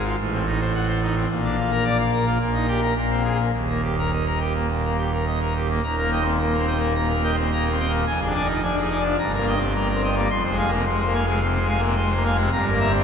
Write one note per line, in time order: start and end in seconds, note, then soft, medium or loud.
0.00 0.15 G#1 medium
0.00 0.15 G#2 medium
0.04 0.16 F4 medium
0.18 1.26 A1 medium
0.18 1.26 A2 medium
0.32 0.45 C4 medium
0.46 0.59 D#4 medium
0.60 0.73 C5 medium
0.74 0.87 F#5 loud
0.88 1.00 C5 medium
1.02 1.14 D#4 medium
1.16 1.28 C4 medium
1.30 2.37 A#1 medium
1.30 2.37 A#2 medium
1.44 1.56 D4 medium
1.58 1.70 F4 medium
1.71 1.84 A#4 medium
1.85 1.97 D5 medium
1.99 2.12 F5 loud
2.13 2.25 A#4 medium
2.26 2.38 F4 medium
2.40 2.93 A#1 loud
2.40 2.93 A#2 medium
2.54 2.66 D#4 medium
2.68 2.80 G4 medium
2.81 2.94 A#4 loud
2.95 3.51 A#1 medium
2.95 3.51 A#2 medium
3.10 3.23 C4 medium
3.24 3.37 G#4 medium
3.39 3.51 A#4 loud
3.53 5.79 D#1 medium
3.53 5.79 D#2 medium
3.68 3.81 A#3 medium
3.83 3.95 G4 medium
3.98 4.10 A#4 medium
4.12 4.25 D#5 loud
4.26 4.39 A#4 medium
4.40 4.53 G4 medium
4.54 4.67 A#3 medium
4.70 4.82 A#2 medium
4.84 4.97 A#3 medium
4.98 5.11 G4 medium
5.12 5.25 A#4 medium
5.26 5.39 D#5 medium
5.41 5.54 A#4 medium
5.55 5.68 G4 medium
5.70 5.81 A#3 medium
5.83 8.04 D#1 medium
5.83 8.04 D#2 medium
5.83 5.96 A#5 loud
5.98 6.10 A#4 medium
6.03 6.19 A#3 medium
6.12 6.24 D#5 medium
6.12 6.23 G5 medium
6.21 6.37 C4 medium
6.25 6.38 A#2 medium
6.39 6.56 A#3 medium
6.39 6.52 A#5 medium
6.53 6.66 A#4 medium
6.58 6.74 C4 medium
6.67 6.79 D#5 medium
6.67 6.79 G5 medium
6.76 6.93 A#3 medium
6.81 6.93 A#2 medium
6.95 7.12 A#2 medium
6.95 7.08 A#5 medium
7.09 7.22 A#4 medium
7.14 7.31 A#3 medium
7.24 7.36 D#5 medium
7.24 7.36 G5 medium
7.34 7.50 C4 medium
7.38 7.51 A#2 medium
7.52 7.68 A#3 medium
7.52 7.65 A#5 medium
7.66 7.78 A#4 medium
7.71 7.87 C4 medium
7.79 7.91 D#5 medium
7.79 7.91 G5 medium
7.88 8.05 A#3 medium
7.93 8.05 A#2 medium
8.06 9.15 F1 medium
8.06 9.15 F2 medium
8.06 8.19 G#5 loud
8.21 8.34 G#4 medium
8.25 8.42 D4 medium
8.35 8.47 D5 medium
8.35 8.47 G#5 medium
8.44 8.60 D#4 medium
8.49 8.62 F3 medium
8.63 8.80 D4 medium
8.63 8.76 G#5 medium
8.77 8.89 G#4 medium
8.82 8.98 D#4 medium
8.91 9.03 D5 medium
8.91 9.03 G#5 medium
9.00 9.16 D4 medium
9.05 9.17 F3 medium
9.18 10.27 G1 medium
9.18 10.27 G2 medium
9.18 9.31 A#5 loud
9.34 9.54 A#3 medium
9.34 9.46 A#4 medium
9.47 9.59 D#5 medium
9.47 9.59 G5 medium
9.56 9.72 C4 medium
9.61 9.74 G3 medium
9.75 9.92 A#3 medium
9.75 9.88 A#5 medium
9.89 10.01 A#4 medium
9.94 10.10 C4 medium
10.03 10.15 D#5 medium
10.03 10.15 G5 medium
10.12 10.28 A#3 medium
10.17 10.29 G3 medium
10.30 12.48 F1 medium
10.30 12.48 F2 medium
10.30 10.43 C6 loud
10.45 10.57 C5 medium
10.49 10.66 G#3 medium
10.58 10.70 F5 medium
10.58 10.70 G#5 medium
10.67 10.83 A#3 medium
10.72 10.84 C3 medium
10.86 11.03 G#3 medium
10.86 10.99 C6 medium
11.00 11.13 C5 medium
11.05 11.21 A#3 medium
11.14 11.26 F5 medium
11.14 11.26 G#5 medium
11.24 11.39 C3 medium
11.24 11.40 G#3 medium
11.41 11.58 C3 medium
11.41 11.54 C6 medium
11.54 11.67 C5 medium
11.60 11.77 G#3 medium
11.69 11.81 F5 medium
11.69 11.81 G#5 medium
11.78 11.94 A#3 medium
11.82 11.95 C3 medium
11.96 12.13 G#3 medium
11.96 12.09 C6 medium
12.10 12.23 C5 medium
12.15 12.31 A#3 medium
12.25 12.37 F5 medium
12.25 12.37 G#5 medium
12.34 12.50 G#3 medium
12.39 12.51 C3 medium
12.51 13.04 G1 medium
12.51 13.04 G2 medium
12.51 12.65 A#5 loud
12.66 12.79 A#4 medium
12.71 12.88 A#3 medium
12.80 12.92 E5 medium
12.80 12.92 A#5 medium
12.89 13.04 C4 medium
12.94 13.04 G3 medium